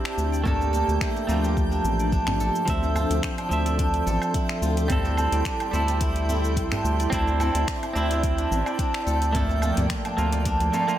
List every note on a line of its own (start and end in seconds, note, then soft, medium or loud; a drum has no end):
0.00 0.41 C4 medium
0.00 0.42 D4 medium
0.00 4.86 D4 medium
0.00 0.43 E4 loud
0.00 1.00 E4 loud
0.00 1.43 G4 medium
0.00 2.64 G4 medium
0.00 0.72 A4 loud
0.00 0.32 D5 medium
0.00 0.44 E5 medium
0.00 10.99 G5 medium
0.00 0.42 C6 medium
0.05 0.45 D4 medium
0.05 finger snap medium
0.05 shaker soft
0.18 0.84 D2 medium
0.18 shaker medium
0.32 1.99 D5 medium
0.32 shaker soft
0.44 1.25 A3 medium
0.44 1.26 A#3 medium
0.44 1.71 D4 medium
0.44 1.27 A4 loud
0.44 kick medium
0.44 djembe bass medium
0.44 shaker soft
0.61 djembe slap soft
0.61 djembe tone medium
0.61 shaker soft
0.73 2.40 A4 loud
0.73 djembe tone medium
0.73 shaker medium
0.88 0.99 D2 medium
0.88 djembe slap soft
0.88 shaker soft
1.01 1.34 E4 loud
1.01 finger snap medium
1.01 kick loud
1.01 shaker soft
1.16 djembe slap soft
1.16 shaker soft
1.27 1.81 D2 medium
1.27 2.64 F3 medium
1.27 2.64 A3 medium
1.27 2.65 A#3 medium
1.27 2.74 F4 medium
1.27 djembe tone medium
1.27 shaker medium
1.44 3.10 G4 medium
1.44 djembe slap soft
1.44 shaker soft
1.57 kick loud
1.57 shaker soft
1.72 2.12 D4 medium
1.72 shaker soft
1.84 2.51 A1 medium
1.84 djembe tone medium
1.84 shaker medium
2.00 3.65 D5 medium
2.00 shaker soft
2.12 3.38 D4 medium
2.12 kick loud
2.12 shaker soft
2.27 finger snap medium
2.27 djembe slap soft
2.27 djembe bass loud
2.27 shaker soft
2.40 4.06 A4 loud
2.40 djembe tone soft
2.40 shaker medium
2.55 shaker soft
2.65 3.06 D2 medium
2.65 3.47 F3 medium
2.65 3.48 C4 medium
2.65 3.02 E4 medium
2.65 7.08 A4 medium
2.65 9.30 C6 medium
2.65 kick medium
2.65 closed hi-hat medium
2.65 shaker soft
2.70 3.49 E5 loud
2.83 djembe slap soft
2.83 djembe tone medium
2.83 shaker soft
2.96 4.40 F4 loud
2.96 djembe tone medium
2.96 low woodblock medium
2.96 shaker medium
3.10 3.21 D2 medium
3.10 4.77 G4 medium
3.10 closed hi-hat soft
3.10 djembe slap soft
3.10 shaker soft
3.23 finger snap medium
3.23 kick loud
3.23 closed hi-hat medium
3.23 shaker soft
3.38 3.79 D4 medium
3.38 closed hi-hat soft
3.38 djembe slap soft
3.38 low woodblock medium
3.38 shaker soft
3.49 4.03 D2 medium
3.49 4.86 F3 medium
3.49 4.87 C4 medium
3.49 shaker medium
3.53 4.88 E5 loud
3.66 5.32 D5 medium
3.66 closed hi-hat soft
3.66 djembe slap soft
3.66 shaker soft
3.79 5.04 D4 loud
3.79 kick loud
3.79 closed hi-hat medium
3.79 shaker soft
3.94 closed hi-hat soft
3.94 shaker soft
4.06 4.19 A1 loud
4.06 5.73 A4 loud
4.06 djembe tone medium
4.06 shaker medium
4.22 low woodblock medium
4.22 shaker soft
4.34 4.68 E4 medium
4.34 kick loud
4.34 closed hi-hat medium
4.34 shaker soft
4.49 finger snap medium
4.49 shaker soft
4.62 5.28 D2 loud
4.62 6.07 F4 medium
4.62 shaker medium
4.77 6.44 G4 medium
4.77 closed hi-hat soft
4.77 shaker soft
4.88 5.69 G3 medium
4.88 5.70 C4 medium
4.88 9.31 E4 medium
4.88 5.71 A4 loud
4.88 7.10 G5 medium
4.88 kick medium
4.88 closed hi-hat medium
4.88 djembe bass medium
4.88 shaker soft
5.05 5.45 D4 medium
5.05 djembe slap medium
5.05 djembe tone medium
5.05 shaker soft
5.17 djembe tone medium
5.17 low woodblock medium
5.17 shaker medium
5.32 5.43 D2 medium
5.32 6.99 D5 medium
5.32 closed hi-hat soft
5.32 djembe slap soft
5.32 shaker soft
5.45 6.71 D4 medium
5.45 finger snap medium
5.45 kick loud
5.45 closed hi-hat medium
5.45 shaker soft
5.60 closed hi-hat soft
5.60 djembe slap medium
5.60 low woodblock medium
5.60 shaker soft
5.71 6.58 D2 medium
5.71 7.08 G3 medium
5.71 7.09 C4 medium
5.71 7.10 E4 medium
5.71 7.39 A4 loud
5.71 djembe tone medium
5.71 shaker medium
5.88 closed hi-hat soft
5.88 djembe slap soft
5.88 shaker soft
6.01 6.28 E4 loud
6.01 kick medium
6.01 closed hi-hat medium
6.01 shaker soft
6.16 closed hi-hat soft
6.16 shaker soft
6.29 7.67 E4 loud
6.29 djembe tone medium
6.29 shaker medium
6.44 8.10 G4 medium
6.44 shaker soft
6.57 6.69 C2 loud
6.57 kick loud
6.57 closed hi-hat medium
6.57 shaker soft
6.72 7.11 D4 medium
6.72 finger snap medium
6.72 djembe slap soft
6.72 djembe bass medium
6.72 shaker soft
6.84 7.08 D2 medium
6.84 djembe tone soft
6.84 shaker medium
6.99 8.66 D5 medium
6.99 closed hi-hat soft
6.99 shaker soft
7.10 7.51 D2 loud
7.10 7.91 C4 medium
7.10 8.38 D4 medium
7.10 7.92 D4 medium
7.10 7.93 E4 loud
7.10 10.99 D5 medium
7.10 9.32 G5 medium
7.10 kick medium
7.10 closed hi-hat medium
7.10 shaker soft
7.27 djembe slap medium
7.27 djembe tone medium
7.27 shaker soft
7.40 9.06 A4 loud
7.40 djembe tone medium
7.40 low woodblock medium
7.40 shaker medium
7.55 7.65 D2 medium
7.55 closed hi-hat soft
7.55 djembe slap medium
7.55 shaker soft
7.68 finger snap medium
7.68 kick loud
7.68 closed hi-hat medium
7.68 shaker soft
7.83 closed hi-hat soft
7.83 djembe slap soft
7.83 low woodblock medium
7.83 shaker soft
7.93 8.47 D2 medium
7.93 9.30 C4 medium
7.93 9.31 D4 medium
7.93 9.34 E4 loud
7.93 9.32 E4 loud
7.93 shaker medium
8.11 9.77 G4 medium
8.11 closed hi-hat soft
8.11 djembe slap soft
8.11 shaker soft
8.23 kick loud
8.23 closed hi-hat medium
8.23 shaker soft
8.38 8.78 D4 medium
8.38 closed hi-hat soft
8.38 shaker soft
8.51 8.63 A1 medium
8.51 djembe tone medium
8.51 shaker medium
8.66 10.32 D5 medium
8.66 low woodblock medium
8.66 shaker soft
8.79 10.05 D4 medium
8.79 kick loud
8.79 closed hi-hat medium
8.79 shaker soft
8.94 finger snap medium
8.94 shaker soft
9.07 9.73 D2 loud
9.07 10.73 A4 loud
9.07 shaker medium
9.22 closed hi-hat soft
9.22 shaker soft
9.32 10.99 F3 medium
9.32 10.14 A3 medium
9.32 10.15 A#3 medium
9.32 9.68 E4 loud
9.32 10.16 A4 loud
9.32 10.99 G5 medium
9.32 kick loud
9.32 closed hi-hat medium
9.32 djembe bass medium
9.32 shaker soft
9.49 djembe slap medium
9.49 djembe tone medium
9.49 shaker soft
9.62 10.99 F4 loud
9.62 djembe tone medium
9.62 low woodblock medium
9.62 shaker medium
9.77 9.88 D2 medium
9.77 10.99 G4 medium
9.77 closed hi-hat soft
9.77 djembe slap soft
9.77 djembe bass medium
9.77 shaker soft
9.90 finger snap medium
9.90 kick medium
9.90 closed hi-hat medium
9.90 shaker soft
10.05 10.45 D4 medium
10.05 closed hi-hat soft
10.05 djembe slap soft
10.05 low woodblock medium
10.05 shaker soft
10.17 10.60 D2 medium
10.17 10.70 A3 medium
10.17 10.71 A#3 medium
10.17 10.71 F4 medium
10.17 djembe tone medium
10.17 shaker medium
10.33 10.99 D5 medium
10.33 closed hi-hat soft
10.33 djembe slap medium
10.33 shaker soft
10.45 10.99 D4 loud
10.45 kick loud
10.45 closed hi-hat medium
10.45 shaker soft
10.60 10.71 D2 medium
10.60 closed hi-hat soft
10.60 shaker soft
10.72 10.84 A3 medium
10.72 10.85 A#3 medium
10.72 10.85 F4 medium
10.72 10.99 A4 loud
10.72 djembe tone medium
10.72 shaker medium
10.87 10.98 A3 loud
10.87 10.98 A#3 medium
10.87 10.99 F4 loud
10.87 shaker soft